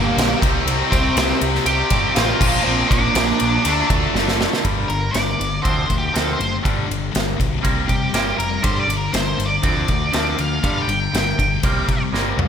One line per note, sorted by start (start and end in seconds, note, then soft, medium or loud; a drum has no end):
0.00 0.40 G2 loud
0.00 0.42 G2 medium
0.00 0.40 D3 medium
0.00 0.41 D3 medium
0.00 0.40 G3 medium
0.00 0.41 G3 loud
0.00 0.38 A#3 medium
0.00 0.39 D4 medium
0.00 0.38 A#4 medium
0.00 0.39 A#4 medium
0.00 2.36 G5 medium
0.17 0.33 A#1 medium
0.17 snare loud
0.17 ride loud
0.41 0.59 C2 medium
0.41 2.38 C3 loud
0.41 2.39 G3 loud
0.41 2.40 C4 loud
0.41 2.38 E4 medium
0.41 3.62 C5 medium
0.41 kick loud
0.41 ride medium
0.65 0.82 C2 loud
0.65 ride loud
0.91 1.08 C2 loud
0.91 1.38 C4 medium
0.91 1.37 C5 loud
0.91 kick medium
0.91 ride medium
1.16 1.32 C2 loud
1.16 snare loud
1.16 ride loud
1.41 1.58 C2 medium
1.41 ride medium
1.55 snare soft
1.65 1.82 C2 medium
1.65 1.89 C3 medium
1.65 1.90 G3 medium
1.65 1.89 C4 loud
1.65 2.12 G4 medium
1.65 2.12 G5 loud
1.65 ride loud
1.90 2.07 G1 medium
1.90 2.40 C3 medium
1.90 2.40 G3 medium
1.90 2.39 C4 medium
1.90 kick medium
1.90 ride medium
2.15 2.32 A1 loud
2.15 2.62 F4 medium
2.15 2.68 F5 loud
2.15 snare loud
2.15 ride loud
2.39 2.57 A#1 loud
2.39 3.63 A#2 loud
2.39 3.64 F3 loud
2.39 3.65 A#3 loud
2.39 3.63 D4 medium
2.39 3.63 A#5 medium
2.39 kick loud
2.39 crash loud
2.63 2.82 A#1 loud
2.63 2.88 C4 medium
2.63 2.91 C5 medium
2.89 3.07 A#1 medium
2.89 3.85 D4 medium
2.89 3.87 D5 medium
2.89 kick medium
2.89 ride medium
3.15 3.31 A#1 loud
3.15 snare loud
3.15 ride loud
3.40 3.57 A#1 medium
3.40 ride medium
3.65 3.81 D2 medium
3.65 4.63 D3 medium
3.65 4.64 A3 loud
3.65 4.65 D4 loud
3.65 4.64 F4 medium
3.65 4.64 D5 medium
3.65 4.64 A5 medium
3.65 ride loud
3.90 4.06 D2 medium
3.90 kick medium
3.90 ride medium
4.14 4.46 F#1 medium
4.14 snare medium
4.28 snare medium
4.41 snare loud
4.53 snare medium
4.64 4.84 G1 medium
4.64 4.87 G2 medium
4.64 4.88 D3 medium
4.64 4.88 G3 medium
4.64 kick loud
4.64 ride medium
4.88 5.09 G1 medium
4.88 5.11 G2 medium
4.88 5.12 D3 medium
4.88 5.15 A#4 medium
4.88 ride medium
5.11 5.33 G1 medium
5.11 5.36 G2 medium
5.11 5.37 D3 medium
5.11 5.59 D5 medium
5.11 ride medium
5.15 snare loud
5.38 5.59 G1 medium
5.38 5.61 G2 medium
5.38 5.61 D3 medium
5.38 ride medium
5.62 5.84 D2 medium
5.62 5.87 D3 medium
5.62 5.87 F3 medium
5.62 5.87 A3 medium
5.62 5.87 C4 medium
5.62 5.88 D4 medium
5.62 5.94 C5 medium
5.62 kick loud
5.62 ride medium
5.88 6.09 D2 medium
5.88 6.11 D3 medium
5.88 6.11 F3 medium
5.88 6.11 A3 medium
5.88 kick medium
5.88 ride medium
5.98 6.15 G4 medium
6.13 6.35 D2 medium
6.13 6.37 D3 loud
6.13 6.37 F3 medium
6.13 6.37 A3 medium
6.13 6.38 C4 loud
6.13 6.37 D4 medium
6.13 6.32 A4 medium
6.13 snare loud
6.13 ride medium
6.33 6.55 C5 medium
6.38 6.59 F#1 medium
6.38 6.62 D3 medium
6.38 6.61 F3 medium
6.38 6.62 A3 medium
6.38 ride medium
6.63 6.84 G1 medium
6.63 6.86 G2 medium
6.63 6.87 D3 medium
6.63 6.88 G3 medium
6.63 kick loud
6.63 ride medium
6.88 7.09 G1 medium
6.88 7.10 G2 medium
6.88 7.11 D3 medium
6.88 ride medium
7.11 7.34 G1 medium
7.11 7.35 G2 medium
7.11 7.36 D3 medium
7.11 ride medium
7.16 snare loud
7.37 7.59 B1 medium
7.37 7.60 G2 medium
7.37 7.61 D3 medium
7.37 kick medium
7.37 ride medium
7.61 7.86 C3 medium
7.61 7.86 G3 medium
7.61 7.87 A#3 medium
7.61 7.87 C4 loud
7.61 kick loud
7.61 ride medium
7.65 7.84 C2 medium
7.88 8.11 C3 medium
7.88 8.09 C3 medium
7.88 8.11 G3 medium
7.88 8.38 G4 medium
7.88 kick medium
7.88 ride medium
8.13 8.32 G1 medium
8.13 8.38 C3 medium
8.13 8.38 G3 loud
8.13 8.38 A#3 loud
8.13 8.38 C4 loud
8.13 snare loud
8.13 ride medium
8.38 8.58 F1 medium
8.38 8.62 C3 medium
8.38 8.62 G3 medium
8.38 8.64 A#4 medium
8.38 ride medium
8.63 8.83 G1 medium
8.63 8.86 G2 medium
8.63 8.87 D3 medium
8.63 8.88 G3 loud
8.63 8.79 C5 medium
8.63 kick loud
8.63 ride loud
8.79 8.97 D5 medium
8.88 9.07 G1 medium
8.88 9.11 G2 medium
8.88 9.11 D3 medium
8.88 ride medium
8.97 9.13 A#4 medium
9.12 9.33 G1 medium
9.12 9.36 G2 medium
9.12 9.36 D3 medium
9.12 9.47 C5 medium
9.12 snare loud
9.12 ride medium
9.38 9.58 G1 medium
9.38 9.61 G2 medium
9.38 9.61 D3 medium
9.38 ride medium
9.46 10.40 D5 medium
9.63 9.83 D2 medium
9.63 9.87 D3 medium
9.63 9.87 F3 medium
9.63 9.86 A3 medium
9.63 9.87 C4 medium
9.63 9.88 D4 medium
9.63 kick loud
9.63 ride medium
9.87 10.08 D2 medium
9.87 10.11 D3 medium
9.87 10.11 F3 medium
9.87 10.11 A3 medium
9.87 kick medium
9.87 ride medium
10.12 10.33 D2 medium
10.12 10.36 D3 medium
10.12 10.37 F3 medium
10.12 10.37 A3 loud
10.12 10.37 C4 medium
10.12 10.38 D4 loud
10.12 snare medium
10.12 ride medium
10.37 10.58 D2 medium
10.37 10.60 D3 medium
10.37 10.61 F3 medium
10.37 10.61 A3 medium
10.37 10.82 F5 medium
10.37 ride medium
10.63 10.83 G1 medium
10.63 10.87 G2 medium
10.63 10.87 D3 medium
10.63 10.88 G3 loud
10.63 kick loud
10.63 ride medium
10.82 12.02 G5 medium
10.88 11.07 G1 medium
10.88 11.11 G2 medium
10.88 11.11 D3 medium
10.88 ride medium
11.13 11.32 G1 medium
11.13 11.36 G2 medium
11.13 11.36 D3 medium
11.13 snare loud
11.13 ride medium
11.38 11.58 G1 medium
11.38 11.61 G2 medium
11.38 11.61 D3 medium
11.38 kick medium
11.38 ride medium
11.63 11.83 C2 medium
11.63 11.87 C3 medium
11.63 11.87 G3 medium
11.63 11.87 A#3 medium
11.63 11.87 C4 loud
11.63 kick loud
11.63 ride medium
11.88 12.08 C3 medium
11.88 12.11 C3 medium
11.88 12.11 G3 medium
11.88 kick medium
11.88 ride medium
12.13 12.32 G1 medium
12.13 12.38 C3 medium
12.13 12.38 G3 loud
12.13 12.37 A#3 medium
12.13 12.38 C4 loud
12.13 snare medium
12.37 12.48 C2 medium
12.37 12.48 C3 medium
12.37 12.48 G3 medium
12.37 mid tom medium